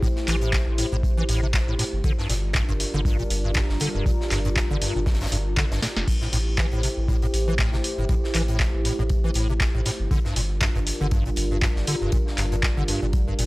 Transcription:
Already playing: analog synth pad A3 E4 G4 C5
0.03 acid bass A2, kick, closed hi-hat
0.16 snare
0.28 analog synth bass A1, acid bass E3, snare, clap, closed hi-hat, open hi-hat
0.41 acid bass A2, closed hi-hat
0.53 acid bass C3, kick, snare, clap, closed hi-hat
0.67 analog synth bass A1
0.78 acid bass A2, closed hi-hat, open hi-hat
0.92 analog synth bass A1, acid bass A2
1.03 kick, closed hi-hat
1.18 acid bass E3
1.29 analog synth bass A1, acid bass A2, closed hi-hat, open hi-hat
1.43 acid bass C3
1.54 kick, snare, clap, closed hi-hat
1.68 analog synth bass A1, acid bass A2
1.79 acid bass A2, snare, closed hi-hat, open hi-hat
1.93 analog synth bass G1
2.04 acid bass D3, analog synth pad G3 D4 F4 A#4, kick, closed hi-hat
2.18 acid bass G2, snare
2.29 analog synth bass G1, acid bass A#2, snare, closed hi-hat, open hi-hat
2.53 acid bass G2, kick, snare, clap, closed hi-hat
2.69 analog synth bass G1, acid bass G2, closed hi-hat
2.80 snare, closed hi-hat, open hi-hat
2.94 analog synth bass G1, acid bass D3
3.05 acid bass G2, kick, closed hi-hat
3.19 acid bass A#2, closed hi-hat
3.30 analog synth bass G1, closed hi-hat, open hi-hat
3.44 acid bass G2
3.54 acid bass G2, kick, snare, clap, closed hi-hat
3.69 analog synth bass G1, snare
3.80 acid bass D3, snare, closed hi-hat, open hi-hat
3.95 analog synth bass F1, acid bass G2
4.06 acid bass A#2, kick, closed hi-hat
4.21 snare
4.31 analog synth bass G1, acid bass G2, snare, clap, closed hi-hat, open hi-hat
4.45 acid bass G2, closed hi-hat
4.56 kick, snare, clap, closed hi-hat
4.70 analog synth bass G1, acid bass D3
4.81 acid bass G2, snare, closed hi-hat, open hi-hat
4.96 analog synth bass G1, acid bass A#2
5.06 kick, snare, closed hi-hat
5.14 snare, closed hi-hat
5.21 acid bass G2, snare, closed hi-hat
5.26 snare, closed hi-hat
5.32 analog synth bass G1, acid bass G2, closed hi-hat, open hi-hat
5.57 acid bass D3, kick, snare, clap, closed hi-hat
5.71 analog synth bass G1, acid bass G2, snare, closed hi-hat
5.82 acid bass A#2, snare, closed hi-hat, open hi-hat
5.96 analog synth bass F1, snare
6.08 analog synth pad A3 E4 G4 C5, kick, closed hi-hat, crash
6.21 acid bass A2, snare
6.32 analog synth bass A1, acid bass A2, snare, closed hi-hat, open hi-hat
6.58 acid bass E3, kick, snare, clap, closed hi-hat
6.72 analog synth bass A1, acid bass A2, closed hi-hat
6.83 acid bass C3, snare, closed hi-hat, open hi-hat
6.97 analog synth bass A1
7.08 acid bass A2, kick, closed hi-hat
7.22 acid bass A2, closed hi-hat
7.34 analog synth bass A1, closed hi-hat, open hi-hat
7.48 acid bass E3
7.59 acid bass A2, kick, snare, clap, closed hi-hat
7.73 analog synth bass A1, acid bass C3, snare
7.84 closed hi-hat, open hi-hat
7.98 analog synth bass G1, acid bass A2
8.09 acid bass A2, kick, closed hi-hat
8.24 snare
8.34 analog synth bass A1, acid bass E3, snare, clap, closed hi-hat, open hi-hat
8.48 acid bass A2, closed hi-hat
8.60 acid bass C3, kick, snare, clap, closed hi-hat
8.74 analog synth bass A1
8.85 acid bass A2, closed hi-hat, open hi-hat
8.99 analog synth bass A1, acid bass A2
9.10 kick, closed hi-hat
9.24 acid bass E3
9.34 analog synth bass A1, acid bass A2, closed hi-hat, open hi-hat
9.49 acid bass C3
9.60 kick, snare, clap, closed hi-hat
9.75 analog synth bass A1, acid bass A2
9.86 acid bass A2, snare, closed hi-hat, open hi-hat
10.00 analog synth bass G1
10.11 acid bass D3, analog synth pad G3 D4 F4 A#4, kick, closed hi-hat
10.25 acid bass G2, snare
10.35 analog synth bass G1, acid bass A#2, snare, closed hi-hat, open hi-hat
10.61 acid bass G2, kick, snare, clap, closed hi-hat
10.75 analog synth bass G1, acid bass G2, closed hi-hat
10.86 snare, closed hi-hat, open hi-hat
11.01 analog synth bass G1, acid bass D3
11.11 acid bass G2, kick, closed hi-hat
11.26 acid bass A#2, closed hi-hat
11.36 analog synth bass G1, closed hi-hat, open hi-hat
11.51 acid bass G2
11.62 acid bass G2, kick, snare, clap, closed hi-hat
11.76 analog synth bass G1, snare
11.87 acid bass D3, closed hi-hat, open hi-hat
12.02 analog synth bass F1, acid bass G2
12.12 acid bass A#2, kick, closed hi-hat
12.27 snare
12.37 analog synth bass G1, acid bass G2, snare, clap, closed hi-hat, open hi-hat
12.52 acid bass G2, closed hi-hat
12.63 kick, snare, clap, closed hi-hat
12.77 analog synth bass G1, acid bass D3
12.88 acid bass G2, closed hi-hat, open hi-hat
13.02 analog synth bass G1, acid bass A#2
13.13 kick, closed hi-hat
13.28 acid bass G2
13.39 analog synth bass G1, acid bass A#2, closed hi-hat, open hi-hat

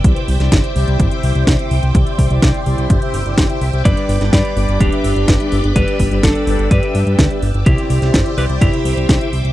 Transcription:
Already playing: string machine G5
0.04 analog synth bass C2, analog polysynth C3 E4 G4 C5 D5, string machine C5 E5 D6, kick, closed hi-hat
0.16 closed hi-hat
0.28 analog synth bass C2, open hi-hat
0.40 analog synth bass C2, analog polysynth C3 E4 G4 C5 D5, snare, closed hi-hat
0.52 analog synth bass G1, kick, snare, closed hi-hat
0.64 closed hi-hat
0.76 analog synth bass C2, analog polysynth C3 E4 G4 C5 D5, open hi-hat
0.88 analog synth bass C2, closed hi-hat
1.00 analog synth bass G1, kick, closed hi-hat
1.11 analog polysynth C3 E4 G4 C5 E5, closed hi-hat
1.23 analog synth bass C2, open hi-hat
1.35 analog synth bass C2, analog polysynth C3 E4 G4 C5 D5, closed hi-hat
1.47 analog synth bass C2, kick, snare, closed hi-hat
1.59 analog polysynth C3 E4 G4 C5 E5, closed hi-hat
1.71 analog synth bass C2, open hi-hat
1.83 analog synth bass C2, closed hi-hat
1.95 analog synth bass C2, analog polysynth C3 E4 G4 C5 D5, kick, closed hi-hat
2.07 closed hi-hat
2.19 analog synth bass C2, kick, open hi-hat
2.30 analog synth bass C2, analog polysynth C3 E4 G4 C5 D5, closed hi-hat
2.42 analog synth bass C2, kick, snare, closed hi-hat
2.54 closed hi-hat
2.66 analog synth bass C2, analog polysynth C3 E4 G4 C5 D5, open hi-hat
2.78 analog synth bass C2, closed hi-hat
2.90 analog synth bass G1, kick, closed hi-hat
3.02 analog polysynth C3 E4 G4 C5 E5, closed hi-hat
3.14 analog synth bass G1, open hi-hat
3.26 analog synth bass G1, analog polysynth C3 E4 G4 C5 D5, closed hi-hat
3.38 analog synth bass G1, kick, snare, closed hi-hat
3.50 analog polysynth C3 E4 G4 C5 E5, closed hi-hat
3.61 analog synth bass C2, open hi-hat
3.73 analog synth bass C2, closed hi-hat
3.85 analog synth bass G1, analog polysynth G3 D4 G4 B4 D5, string machine B4 D5, lead electric guitar B4 D5, kick, closed hi-hat
3.97 closed hi-hat
4.09 analog synth bass G1, open hi-hat
4.21 analog synth bass G1, analog polysynth G3 D4 G4 B4 D5, snare, closed hi-hat
4.33 analog synth bass G2, lead electric guitar B4 D5, kick, snare, closed hi-hat
4.45 closed hi-hat
4.57 analog synth bass G1, analog polysynth G3 D4 G4 B4 D5, open hi-hat
4.69 analog synth bass G1, closed hi-hat
4.80 analog synth bass D1, lead electric guitar D4 G4, kick, closed hi-hat
4.92 analog polysynth G3 D4 G4 B4 E5, closed hi-hat
5.04 analog synth bass G1, open hi-hat
5.16 analog synth bass G1, analog polysynth G3 D4 G4 B4 D5, closed hi-hat
5.28 analog synth bass G1, kick, snare, closed hi-hat
5.40 analog polysynth G3 D4 G4 B4 E5, closed hi-hat
5.52 analog synth bass G1, open hi-hat
5.64 analog synth bass G1, closed hi-hat
5.76 analog synth bass G1, analog polysynth G3 D4 G4 B4 D5, lead electric guitar G4 B4, string machine E6, kick, closed hi-hat
5.88 closed hi-hat
6.00 analog synth bass G1, kick, open hi-hat
6.11 analog synth bass G1, analog polysynth G3 D4 G4 B4 D5, closed hi-hat
6.23 analog synth bass G1, lead electric guitar D4 A4, kick, snare, closed hi-hat
6.35 closed hi-hat
6.47 analog synth bass G1, analog polysynth G3 D4 G4 B4 D5, open hi-hat
6.59 analog synth bass G1, closed hi-hat
6.71 analog synth bass G2, lead electric guitar G4 B4, kick, closed hi-hat
6.83 analog polysynth G3 D4 G4 B4 E5, closed hi-hat
6.95 analog synth bass G2, open hi-hat
7.07 analog synth bass G2, analog polysynth G3 D4 G4 B4 D5, closed hi-hat
7.19 analog synth bass D2, kick, snare, closed hi-hat
7.30 analog polysynth G3 D4 G4 B4 E5, closed hi-hat
7.42 analog synth bass G1, open hi-hat
7.54 analog synth bass G1, closed hi-hat
7.66 analog synth bass C2, analog polysynth C3 E4 G4 C5 D5, lead electric guitar E4 G4, string machine C5 E5 G5 D6, kick, closed hi-hat
7.78 closed hi-hat
7.90 analog synth bass C2, open hi-hat
8.02 analog synth bass C2, analog polysynth C3 E4 G4 C5 D5, snare, closed hi-hat
8.14 analog synth bass G1, kick, snare, closed hi-hat
8.26 closed hi-hat
8.38 analog synth bass C2, analog polysynth C3 E4 G4 C5 D5, lead electric guitar G4 B4, open hi-hat
8.49 analog synth bass C2, closed hi-hat
8.61 analog synth bass G1, lead electric guitar E4 G4, kick, closed hi-hat
8.73 analog polysynth C3 E4 G4 C5 E5, closed hi-hat
8.85 analog synth bass C2, open hi-hat
8.97 analog synth bass C2, analog polysynth C3 E4 G4 C5 D5, closed hi-hat
9.09 analog synth bass C2, kick, snare, closed hi-hat
9.21 analog polysynth C3 E4 G4 C5 E5, closed hi-hat
9.33 analog synth bass C2, open hi-hat
9.45 analog synth bass C2, closed hi-hat

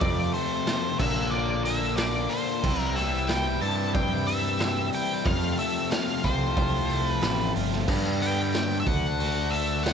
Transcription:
0.01 overdriven electric guitar F2 C3 F3 A3 C4 F4, picked electric bass F2, lead electric guitar D5, kick, open hi-hat, tambourine
0.34 overdriven electric guitar A3, lead electric guitar C5, open hi-hat
0.51 tambourine
0.66 overdriven electric guitar F4, snare, open hi-hat, tambourine
0.99 picked electric bass A#1, overdriven electric guitar A#2 D3 A#3 D4 F4, lead electric guitar E5, kick, tambourine, crash
1.31 overdriven electric guitar F4, lead electric guitar D5
1.65 overdriven electric guitar A#3, lead electric guitar E5, open hi-hat, tambourine
1.81 tambourine
1.97 overdriven electric guitar A#2 D3 A#3 D4, lead electric guitar D5, snare, open hi-hat, tambourine
2.01 overdriven electric guitar F4
2.14 tambourine
2.29 overdriven electric guitar F4, lead electric guitar C5, open hi-hat, tambourine
2.63 picked electric bass C2, overdriven electric guitar C3 E3 G3 C4 E4, kick, tambourine, crash
2.80 lead electric guitar A#4, tambourine
2.95 overdriven electric guitar G3, lead electric guitar E5, snare, open hi-hat
3.12 tambourine
3.27 overdriven electric guitar E4, lead electric guitar G5, snare, open hi-hat, tambourine
3.61 picked electric bass G2, overdriven electric guitar C3 E3 G3 C4 E4, lead electric guitar A5, open hi-hat, tambourine
3.94 overdriven electric guitar E4, lead electric guitar G5, kick, open hi-hat
4.27 overdriven electric guitar G3, lead electric guitar E5, open hi-hat, tambourine
4.59 overdriven electric guitar C4, snare, open hi-hat, tambourine
4.76 tambourine
4.92 overdriven electric guitar E4, lead electric guitar G5, open hi-hat, tambourine
5.09 tambourine
5.24 overdriven electric guitar F2 C3 F3 A3 C4 F4, picked electric bass F2, lead electric guitar F5, kick, open hi-hat, tambourine
5.42 tambourine
5.58 overdriven electric guitar A3, lead electric guitar E5, open hi-hat
5.74 tambourine
5.91 overdriven electric guitar F4, lead electric guitar F5, snare, open hi-hat, tambourine
6.07 tambourine
6.23 picked electric bass C2, overdriven electric guitar F2 C3 F3 A3 C4 F4, lead electric guitar C5, kick, open hi-hat, tambourine
6.56 overdriven electric guitar F4, kick, open hi-hat, tambourine
6.73 tambourine
6.90 overdriven electric guitar A3, open hi-hat, tambourine
7.06 lead electric guitar B4, tambourine
7.22 picked electric bass A1, overdriven electric guitar C4, snare, open hi-hat, tambourine
7.39 tambourine
7.56 picked electric bass G1, overdriven electric guitar F4, open hi-hat, tambourine
7.72 snare
7.87 overdriven electric guitar G2 D3 G3 B3 D4 G4, picked electric bass G2, kick, crash, tambourine
8.05 tambourine
8.21 overdriven electric guitar B3, lead electric guitar G5, open hi-hat
8.38 tambourine
8.54 overdriven electric guitar G4, snare, open hi-hat, tambourine
8.80 lead electric guitar E5
8.86 picked electric bass D2, overdriven electric guitar D3 A3 D4 F#4, lead electric guitar F#5, kick, open hi-hat, tambourine
9.20 overdriven electric guitar F#4, open hi-hat
9.51 overdriven electric guitar A3, lead electric guitar E5, open hi-hat, tambourine
9.69 tambourine
9.79 lead electric guitar E5 F#5
9.84 overdriven electric guitar D3 A3 D4 F#4, snare, open hi-hat, tambourine

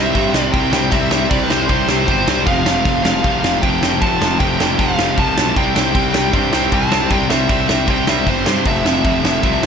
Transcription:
Already playing: picked electric bass C2, overdriven electric guitar C3 G3 C4, lead electric guitar E5
0.15 picked electric bass G2, overdriven electric guitar C3 G3 C4, kick, crash
0.33 picked electric bass C2, overdriven electric guitar C3 G3 C4, snare
0.42 lead electric guitar D5
0.52 picked electric bass C2, overdriven electric guitar C3 G3 C4, lead electric guitar G5, kick, crash
0.72 picked electric bass C2, overdriven electric guitar C3 G3 C4, snare
0.91 picked electric bass C2, overdriven electric guitar C3 G3 C4, lead electric guitar E5, kick, crash
1.11 picked electric bass C2, overdriven electric guitar C3 G3 C4, snare
1.30 picked electric bass C2, overdriven electric guitar C3 G3 C4, lead electric guitar D5, kick, crash
1.43 lead electric guitar B4
1.50 picked electric bass C2, overdriven electric guitar C3 G3 C4, lead electric guitar C5, snare
1.69 picked electric bass C2, overdriven electric guitar C3 G3 C4, kick, crash
1.88 picked electric bass C2, overdriven electric guitar C3 G3 C4, snare
2.07 picked electric bass G1, overdriven electric guitar C3 G3 C4, lead electric guitar C5, kick, crash
2.27 picked electric bass C2, overdriven electric guitar C3 G3 C4, snare
2.45 picked electric bass F1, overdriven electric guitar F2 C3 F3, lead electric guitar F5, kick, crash
2.64 picked electric bass F1, overdriven electric guitar F2 C3 F3, snare
2.83 picked electric bass F1, overdriven electric guitar F2 C3 F3, kick, crash
3.03 picked electric bass F1, overdriven electric guitar F2 C3 F3, lead electric guitar F5, snare
3.21 picked electric bass C2, overdriven electric guitar F2 C3 F3, kick, crash
3.42 picked electric bass F1, overdriven electric guitar F2 C3 F3, snare
3.61 picked electric bass F1, overdriven electric guitar F2 C3 F3, lead electric guitar G5, kick, crash
3.81 picked electric bass F1, overdriven electric guitar F2 C3 F3, snare
4.01 picked electric bass F1, overdriven electric guitar F2 C3 F3, lead electric guitar A5, kick, crash
4.20 picked electric bass F1, overdriven electric guitar F2 C3 F3, snare
4.40 picked electric bass F1, overdriven electric guitar F2 C3 F3, lead electric guitar G5, kick, crash
4.59 picked electric bass F1, overdriven electric guitar F2 C3 F3, snare
4.77 picked electric bass F1, overdriven electric guitar F2 C3 F3, lead electric guitar F5, kick, crash
4.96 picked electric bass F1, overdriven electric guitar F2 C3 F3, snare
5.16 picked electric bass C2, overdriven electric guitar F2 C3 F3, lead electric guitar A5, kick, crash
5.36 picked electric bass B1, overdriven electric guitar F2 C3 F3, snare
5.55 picked electric bass C2, overdriven electric guitar C3 G3 C4, lead electric guitar G5, kick, crash
5.74 picked electric bass C2, overdriven electric guitar C3 G3 C4, snare
5.93 picked electric bass C2, overdriven electric guitar C3 G3 C4, kick, crash
6.13 picked electric bass C2, overdriven electric guitar C3 G3 C4, lead electric guitar G5, snare
6.32 picked electric bass G2, overdriven electric guitar C3 G3 C4, kick, crash
6.52 picked electric bass C2, overdriven electric guitar C3 G3 C4, snare
6.71 picked electric bass C2, overdriven electric guitar C3 G3 C4, lead electric guitar A5, kick, crash
6.90 picked electric bass C2, overdriven electric guitar C3 G3 C4, snare
7.10 picked electric bass C2, overdriven electric guitar C3 G3 C4, lead electric guitar G5, kick, crash
7.29 picked electric bass C2, overdriven electric guitar C3 G3 C4, lead electric guitar E5, snare
7.48 picked electric bass C2, overdriven electric guitar C3 G3 C4, kick, crash
7.68 picked electric bass C2, overdriven electric guitar C3 G3 C4, lead electric guitar E5, snare
7.87 picked electric bass C2, overdriven electric guitar C3 G3 C4, lead electric guitar G5, kick, crash
8.07 picked electric bass C2, overdriven electric guitar C3 G3 C4, lead electric guitar E5, snare
8.27 picked electric bass G1, overdriven electric guitar C3 G3 C4, lead electric guitar C5, kick, crash
8.45 picked electric bass G2, overdriven electric guitar C3 G3 C4, snare
8.65 picked electric bass F1, overdriven electric guitar F2 C3 F3, lead electric guitar E5, kick, crash
8.85 picked electric bass F1, overdriven electric guitar F2 C3 F3, snare
9.04 picked electric bass F1, overdriven electric guitar F2 C3 F3, kick, crash
9.23 picked electric bass F1, overdriven electric guitar F2 C3 F3, lead electric guitar E5, snare
9.43 picked electric bass C2, overdriven electric guitar F2 C3 F3, kick, crash
9.62 picked electric bass F1, overdriven electric guitar F2 C3 F3

